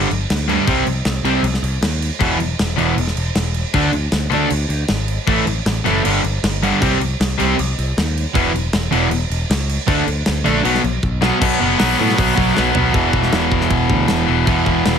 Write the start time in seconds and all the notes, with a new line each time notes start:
0.11 G1, crash
0.30 D2, snare, crash
0.48 G2 D3 G3, crash
0.67 C2 C3 G3 C4, kick, crash
0.87 C2, crash
1.05 C2, snare, crash
1.23 C2 C3 G3 C4, crash
1.43 C2, crash
1.54 snare
1.62 C2, crash
1.81 D#2, snare, crash
2.02 crash
2.20 E1 E2 B2 E3, kick, crash
2.39 E1, crash
2.59 E1, snare, crash
2.76 E1 E2 B2 E3, crash
2.97 E1, crash
3.07 snare
3.16 E1, crash
3.35 E1, snare, crash
3.54 crash
3.74 D2 D3 A3 D4, kick, crash
3.93 D2, crash
4.12 D2, snare, crash
4.30 D2 D3 A3 D4, crash
4.50 D2, crash
4.69 D2, crash
4.88 G#1, snare, crash
5.08 crash
5.27 A1 A2 E3 A3, kick, crash
5.45 A1, crash
5.66 A1, snare, crash
5.85 F#1 A2 E3 A3, crash
6.03 G1 G2 D3 G3, crash
6.24 G1, crash
6.43 G1, snare, crash
6.63 G2 D3 G3, crash
6.81 C2 C3 G3 C4, kick, crash
7.00 C2, crash
7.20 C2, snare, crash
7.38 C2 C3 G3 C4, crash
7.59 C2, crash
7.78 C2, crash
7.97 D#2, snare, crash
8.17 crash
8.35 E1 E2 B2 E3, kick, crash
8.54 E1, crash
8.73 E1, snare, crash
8.91 E1 E2 B2 E3, crash
9.10 E1, crash
9.30 E1, crash
9.50 C#2, snare, crash
9.69 crash
9.88 D2 D3 A3 D4, kick, crash
10.07 D2, crash
10.26 D2, snare, crash
10.44 A#1 D3 A3 D4, crash
10.64 B1 B2 F#3 B3, crash
10.75 snare
10.84 B1, crash
11.03 B1, kick
11.21 B2 F#3 B3, snare
11.41 B1 B2 F#3 B3, kick, crash
11.60 F#1 B2 F#3 B3
11.78 B1 B2 F#3 B3, snare, open hi-hat
11.98 A2 B2 F#3 B3
12.09 snare
12.16 B1 B2 F#3 B3, kick, open hi-hat
12.35 B1 B2 F#3 B3, kick
12.54 B1 B2 F#3 B3, snare
12.72 B2 F#3 B3, floor tom
12.77 B1
12.91 E1 E2 B2 E3, kick, crash
13.13 E1, kick
13.23 snare
13.33 E1, snare, crash
13.51 E1, kick
13.61 snare
13.70 E1, kick, crash
13.90 D2, kick
14.08 E1, snare, crash
14.27 E1 E2 B2 E3
14.45 E1 E2 B2 E3, kick, crash
14.66 E1, kick
14.85 E1, snare, crash